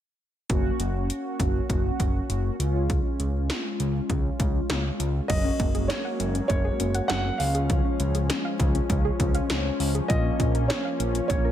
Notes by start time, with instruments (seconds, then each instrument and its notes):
0.50 analog synth bass F#1, analog polysynth A#3 C#4 F#4, kick, closed hi-hat
0.80 analog synth bass F#1, closed hi-hat
1.10 closed hi-hat
1.40 analog synth bass F#1, kick, closed hi-hat
1.70 analog synth bass F#1, kick, closed hi-hat
2.00 analog synth bass F#1, kick, closed hi-hat
2.30 analog synth bass F#1, closed hi-hat
2.60 analog synth bass C#2, analog polysynth G#3 C#4 F4, closed hi-hat
2.90 kick, closed hi-hat
3.20 analog synth bass C#2, closed hi-hat
3.50 snare, closed hi-hat
3.80 analog synth bass C#2, closed hi-hat
4.10 analog synth bass C#2, kick, closed hi-hat
4.40 analog synth bass C#2, kick, closed hi-hat
4.70 analog synth bass C#2, snare, closed hi-hat
5.00 analog synth bass C#2, closed hi-hat
5.28 analog synth bass F#1, synth arpeggio sound F#3, analog synth pad F#3 G#3 A#3, analog polysynth A#3 C#4, grand piano D#5, kick, closed hi-hat, crash
5.45 synth arpeggio sound C#4
5.60 analog synth bass F#1, synth arpeggio sound A#3, kick, closed hi-hat
5.75 synth arpeggio sound G#4, closed hi-hat
5.88 synth arpeggio sound C#4, grand piano C#5, snare, closed hi-hat
6.05 synth arpeggio sound F#5
6.20 analog synth bass F#1, synth arpeggio sound F#3, closed hi-hat
6.35 synth arpeggio sound C#4, closed hi-hat
6.48 analog synth bass F#1, synth arpeggio sound A#3, grand piano C#5, kick, closed hi-hat
6.65 synth arpeggio sound G#4
6.80 analog synth bass F#1, synth arpeggio sound C#4, closed hi-hat
6.95 synth arpeggio sound F#5, closed hi-hat
7.08 analog synth bass F#1, synth arpeggio sound F#3, grand piano F#5, snare, closed hi-hat
7.25 synth arpeggio sound C#4
7.38 analog synth bass C#2, analog synth pad F3 G#3 C#4, analog polysynth G#3 C#4 F4, grand piano F5, open hi-hat
7.55 synth arpeggio sound G#4, closed hi-hat
7.70 synth arpeggio sound F3, kick, closed hi-hat
7.85 synth arpeggio sound C#4
8.00 analog synth bass C#2, synth arpeggio sound G#3, closed hi-hat
8.15 synth arpeggio sound G#4, closed hi-hat
8.30 synth arpeggio sound C#4, snare, closed hi-hat
8.45 synth arpeggio sound F5
8.60 analog synth bass C#2, synth arpeggio sound F3, kick, closed hi-hat
8.75 synth arpeggio sound C#4, closed hi-hat
8.90 analog synth bass C#2, synth arpeggio sound G#3, kick, closed hi-hat
9.05 synth arpeggio sound G#4
9.20 analog synth bass C#2, synth arpeggio sound C#4, kick, closed hi-hat
9.35 synth arpeggio sound F5, closed hi-hat
9.50 analog synth bass C#2, synth arpeggio sound F3, snare, closed hi-hat
9.65 synth arpeggio sound C#4
9.80 analog synth bass C#2, open hi-hat
9.95 synth arpeggio sound G#4, closed hi-hat
10.08 analog synth bass A#1, synth arpeggio sound F3, analog polysynth A#3 C#4 F4, analog synth pad A#3, grand piano D#5, kick, closed hi-hat
10.25 synth arpeggio sound C#4
10.40 analog synth bass A#1, synth arpeggio sound A#3, kick, closed hi-hat
10.55 synth arpeggio sound A#4, closed hi-hat
10.68 synth arpeggio sound C#4, grand piano C#5, snare, closed hi-hat
10.85 synth arpeggio sound F5
11.00 analog synth bass A#1, synth arpeggio sound F3, closed hi-hat
11.15 synth arpeggio sound C#4, closed hi-hat
11.28 analog synth bass A#1, synth arpeggio sound A#3, grand piano C#5, kick, closed hi-hat
11.45 synth arpeggio sound A#4